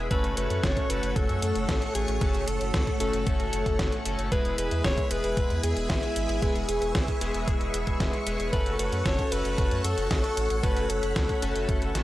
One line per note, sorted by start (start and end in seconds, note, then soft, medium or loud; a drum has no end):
0.11 0.21 F#1 loud
0.11 0.87 A3 medium
0.11 4.28 A3 medium
0.11 0.87 C#4 medium
0.11 0.87 F#4 medium
0.11 0.87 A4 loud
0.11 0.35 B4 loud
0.11 4.28 C#5 medium
0.11 4.28 F#5 medium
0.11 4.28 C#6 medium
0.11 kick loud
0.11 closed hi-hat medium
0.24 0.34 F#1 medium
0.24 closed hi-hat soft
0.37 0.48 F#1 loud
0.37 0.65 B4 loud
0.37 closed hi-hat medium
0.50 0.61 F#2 medium
0.50 closed hi-hat soft
0.63 0.74 F#1 loud
0.63 0.91 C#5 loud
0.63 kick loud
0.63 snare loud
0.63 closed hi-hat medium
0.77 kick medium
0.77 closed hi-hat soft
0.90 1.00 F#1 medium
0.90 2.18 A3 medium
0.90 2.18 C#4 medium
0.90 2.18 F#4 medium
0.90 2.18 A4 medium
0.90 1.18 B4 loud
0.90 closed hi-hat medium
1.03 1.13 F#1 medium
1.03 closed hi-hat soft
1.16 1.26 F#1 loud
1.16 1.94 A4 loud
1.16 kick loud
1.16 closed hi-hat medium
1.29 1.40 F#2 medium
1.29 closed hi-hat soft
1.42 1.53 F#2 medium
1.42 closed hi-hat medium
1.55 1.66 F#1 medium
1.55 closed hi-hat soft
1.69 1.79 A1 loud
1.69 kick loud
1.69 snare loud
1.69 closed hi-hat medium
1.82 closed hi-hat soft
1.95 2.05 A1 medium
1.95 2.49 G#4 loud
1.95 closed hi-hat medium
2.08 2.19 A1 medium
2.08 closed hi-hat soft
2.21 2.32 F#1 loud
2.21 2.42 A3 medium
2.21 2.42 C#4 medium
2.21 2.42 F#4 medium
2.21 2.42 A4 medium
2.21 kick loud
2.21 closed hi-hat medium
2.35 2.45 F#1 medium
2.35 closed hi-hat soft
2.48 2.58 F#1 medium
2.48 3.00 A4 medium
2.48 closed hi-hat medium
2.61 2.71 F#1 medium
2.61 closed hi-hat soft
2.74 2.84 C#2 loud
2.74 kick loud
2.74 snare loud
2.74 closed hi-hat medium
2.87 kick medium
2.87 closed hi-hat soft
3.00 3.11 F#1 medium
3.00 4.02 A3 medium
3.00 4.02 C#4 medium
3.00 4.02 F#4 medium
3.00 3.25 A4 medium
3.00 4.02 A4 loud
3.00 closed hi-hat medium
3.13 3.24 F#1 medium
3.13 closed hi-hat soft
3.27 3.37 F#1 loud
3.27 4.02 A4 medium
3.27 kick loud
3.27 closed hi-hat medium
3.40 3.50 F#1 medium
3.40 closed hi-hat soft
3.53 3.63 F#1 medium
3.53 closed hi-hat medium
3.66 3.76 F#1 medium
3.66 kick medium
3.66 closed hi-hat soft
3.79 3.90 F#1 loud
3.79 kick loud
3.79 snare loud
3.79 closed hi-hat medium
3.92 closed hi-hat soft
4.06 4.16 F#1 medium
4.06 4.29 A3 medium
4.06 4.29 C#4 medium
4.06 4.29 F#4 medium
4.06 4.29 A4 loud
4.06 closed hi-hat medium
4.19 4.29 F#1 medium
4.19 closed hi-hat soft
4.32 4.42 E1 loud
4.32 5.08 G#3 medium
4.32 5.08 B3 medium
4.32 5.08 E4 medium
4.32 8.49 G#4 medium
4.32 5.08 G#4 loud
4.32 8.49 B4 medium
4.32 4.56 B4 loud
4.32 8.49 E5 medium
4.32 6.40 B5 medium
4.32 kick loud
4.32 closed hi-hat medium
4.45 4.55 E1 medium
4.45 closed hi-hat soft
4.58 4.69 E1 medium
4.58 4.83 B4 loud
4.58 closed hi-hat medium
4.71 4.82 E2 medium
4.71 closed hi-hat soft
4.84 4.95 E1 loud
4.84 5.13 C#5 loud
4.84 kick loud
4.84 snare loud
4.84 closed hi-hat medium
4.98 kick medium
4.98 closed hi-hat soft
5.11 5.21 E1 medium
5.11 6.39 G#3 medium
5.11 6.39 B3 medium
5.11 6.39 E4 medium
5.11 6.39 G#4 medium
5.11 5.63 B4 loud
5.11 closed hi-hat medium
5.24 5.34 E1 medium
5.24 closed hi-hat soft
5.37 5.48 E1 loud
5.37 kick loud
5.37 closed hi-hat medium
5.50 5.61 E2 medium
5.50 closed hi-hat soft
5.63 5.74 E2 medium
5.63 5.91 G#4 medium
5.63 closed hi-hat medium
5.77 5.87 E1 medium
5.77 closed hi-hat soft
5.90 6.00 G#1 loud
5.90 6.44 E4 medium
5.90 kick loud
5.90 snare loud
5.90 closed hi-hat medium
6.03 closed hi-hat soft
6.16 6.27 G#1 medium
6.16 closed hi-hat medium
6.29 6.40 G#1 medium
6.29 closed hi-hat soft
6.42 6.53 E1 loud
6.42 6.63 G#3 medium
6.42 6.63 B3 medium
6.42 6.63 E4 medium
6.42 6.63 G#4 medium
6.42 6.68 G#4 loud
6.42 10.59 C#6 medium
6.42 kick loud
6.42 closed hi-hat medium
6.56 6.66 E1 medium
6.56 closed hi-hat soft
6.69 6.79 E1 loud
6.69 7.18 G#4 medium
6.69 closed hi-hat medium
6.82 6.92 E1 medium
6.82 closed hi-hat soft
6.95 7.05 B1 loud
6.95 kick loud
6.95 snare loud
6.95 closed hi-hat medium
7.08 kick medium
7.08 closed hi-hat soft
7.21 7.32 E1 medium
7.21 8.23 G#3 medium
7.21 8.23 B3 medium
7.21 8.23 E4 medium
7.21 8.23 G#4 loud
7.21 closed hi-hat medium
7.34 7.45 E1 medium
7.34 closed hi-hat soft
7.48 7.58 E1 loud
7.48 kick loud
7.48 closed hi-hat medium
7.61 7.71 E1 medium
7.61 closed hi-hat soft
7.74 7.84 E1 medium
7.74 closed hi-hat medium
7.87 7.98 E1 medium
7.87 kick medium
7.87 closed hi-hat soft
8.00 8.11 E1 loud
8.00 kick loud
8.00 snare loud
8.00 closed hi-hat medium
8.13 closed hi-hat soft
8.27 8.37 E1 medium
8.27 8.50 G#3 medium
8.27 8.50 B3 medium
8.27 8.50 E4 medium
8.27 8.50 G#4 loud
8.27 closed hi-hat medium
8.40 8.50 E1 medium
8.40 closed hi-hat soft
8.53 8.63 F#1 loud
8.53 9.29 A3 medium
8.53 9.29 C#4 medium
8.53 9.29 F#4 medium
8.53 9.29 A4 loud
8.53 12.03 A4 medium
8.53 8.77 B4 loud
8.53 12.03 C#5 medium
8.53 12.03 F#5 medium
8.53 kick loud
8.53 closed hi-hat medium
8.66 8.77 F#1 medium
8.66 closed hi-hat soft
8.79 8.90 F#1 medium
8.79 9.07 B4 loud
8.79 closed hi-hat medium
8.92 9.03 F#2 medium
8.92 closed hi-hat soft
9.06 9.16 F#1 loud
9.06 9.33 C#5 loud
9.06 kick loud
9.06 snare loud
9.06 closed hi-hat medium
9.19 kick medium
9.19 closed hi-hat soft
9.32 9.42 F#1 medium
9.32 10.60 A3 medium
9.32 10.60 C#4 medium
9.32 10.60 F#4 medium
9.32 10.60 A4 medium
9.32 9.84 B4 loud
9.32 closed hi-hat medium
9.45 9.55 F#1 medium
9.45 closed hi-hat soft
9.58 9.69 F#1 loud
9.58 kick loud
9.58 closed hi-hat medium
9.71 9.82 F#2 medium
9.71 closed hi-hat soft
9.84 9.95 F#2 medium
9.84 10.09 A4 medium
9.84 closed hi-hat medium
9.98 10.08 F#1 medium
9.98 closed hi-hat soft
10.11 10.21 A1 loud
10.11 10.65 A4 medium
10.11 kick loud
10.11 snare loud
10.11 closed hi-hat medium
10.24 closed hi-hat soft
10.37 10.48 A1 medium
10.37 closed hi-hat medium
10.50 10.61 A1 medium
10.50 closed hi-hat soft
10.63 10.74 F#1 loud
10.63 10.84 A3 medium
10.63 10.84 C#4 medium
10.63 10.84 F#4 medium
10.63 10.84 A4 medium
10.63 10.91 B4 loud
10.63 12.03 B5 medium
10.63 kick loud
10.63 closed hi-hat medium
10.77 10.87 F#1 medium
10.77 closed hi-hat soft
10.90 11.00 F#1 medium
10.90 11.42 A4 medium
10.90 closed hi-hat medium
11.03 11.13 F#1 medium
11.03 closed hi-hat soft
11.16 11.26 C#2 loud
11.16 kick loud
11.16 snare loud
11.16 closed hi-hat medium
11.29 kick medium
11.29 closed hi-hat soft
11.42 11.53 F#1 medium
11.42 12.03 A3 medium
11.42 12.03 C#4 medium
11.42 12.03 F#4 medium
11.42 12.03 A4 loud
11.42 closed hi-hat medium
11.56 11.66 F#1 medium
11.56 closed hi-hat soft
11.69 11.79 F#1 loud
11.69 kick loud
11.69 closed hi-hat medium
11.82 11.92 F#1 medium
11.82 closed hi-hat soft
11.95 12.03 A1 medium
11.95 snare medium
11.95 closed hi-hat medium